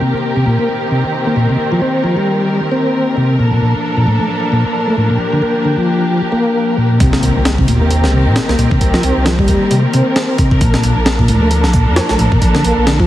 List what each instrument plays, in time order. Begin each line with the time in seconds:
Already playing: string section D#3 A#3 C4 G4 A#4
0.01 tonewheel organ C3
0.36 tonewheel organ C3
0.46 tonewheel organ A#2
0.59 tonewheel organ A#3
0.91 tonewheel organ C3
1.27 tonewheel organ A#3
1.36 tonewheel organ A#2
1.49 tonewheel organ C3
1.72 tonewheel organ F3
1.82 tonewheel organ C4
2.04 tonewheel organ F3
2.17 tonewheel organ G3
2.71 tonewheel organ C4
3.17 tonewheel organ C3
3.39 tonewheel organ A#2, string section F3 A#3 D4 A4
3.53 tonewheel organ A#2
3.62 tonewheel organ A#2
3.97 tonewheel organ A#2
4.07 tonewheel organ A2
4.20 tonewheel organ A3
4.52 tonewheel organ A#2
4.87 tonewheel organ A3
4.97 tonewheel organ A2
5.10 tonewheel organ A#2
5.19 string section G4
5.33 tonewheel organ D3
5.42 tonewheel organ A#3
5.65 tonewheel organ D3
5.77 tonewheel organ F3
6.32 tonewheel organ A#3
6.77 tonewheel organ A#2
7.00 sub bass C2, tonewheel organ C3, string section D#3 A#3 C4 G4 A#4, kick, closed hi-hat, impact
7.13 tonewheel organ C3, snare
7.23 sub bass C2, tonewheel organ C3, closed hi-hat
7.36 sub bass C2
7.45 snare, closed hi-hat
7.58 tonewheel organ C3, kick
7.68 sub bass D#2, tonewheel organ A#2, closed hi-hat
7.81 tonewheel organ A#3
7.91 closed hi-hat
8.04 sub bass C2, snare
8.13 tonewheel organ C3
8.26 sub bass A#2
8.36 snare, closed hi-hat
8.49 sub bass C2, tonewheel organ A#3, snare
8.58 sub bass C2, tonewheel organ A#2, closed hi-hat
8.71 tonewheel organ C3, kick
8.81 sub bass C2, kick, closed hi-hat
8.94 tonewheel organ F3, snare
9.03 sub bass C2, tonewheel organ C4, closed hi-hat
9.17 sub bass C2
9.26 tonewheel organ F3, snare, closed hi-hat
9.39 tonewheel organ G3, kick
9.48 sub bass D#2, kick, closed hi-hat
9.71 sub bass C3, closed hi-hat
9.94 sub bass C3, tonewheel organ C4, closed hi-hat
10.16 snare, closed hi-hat
10.38 tonewheel organ C3, kick, closed hi-hat
10.51 kick
10.61 sub bass A#1, tonewheel organ A#2, string section F3 D4 A4, kick, closed hi-hat
10.74 tonewheel organ A#2, snare
10.83 sub bass A#1, tonewheel organ A#2, closed hi-hat
10.97 sub bass A#1
11.06 snare, closed hi-hat
11.19 tonewheel organ A#2, kick
11.28 sub bass D2, tonewheel organ A2, closed hi-hat
11.42 tonewheel organ A3
11.51 closed hi-hat
11.64 sub bass A#1, snare
11.73 tonewheel organ A#2, kick, closed hi-hat
11.87 sub bass F2
11.96 snare, closed hi-hat
12.09 sub bass A#1, tonewheel organ A3, snare
12.19 sub bass A#1, tonewheel organ A2, closed hi-hat
12.32 tonewheel organ A#2, kick
12.41 sub bass A#1, kick, closed hi-hat
12.55 tonewheel organ D3, snare
12.64 sub bass A#1, tonewheel organ A#3, closed hi-hat
12.77 sub bass A#1
12.87 tonewheel organ D3, snare, closed hi-hat
13.00 tonewheel organ F3, kick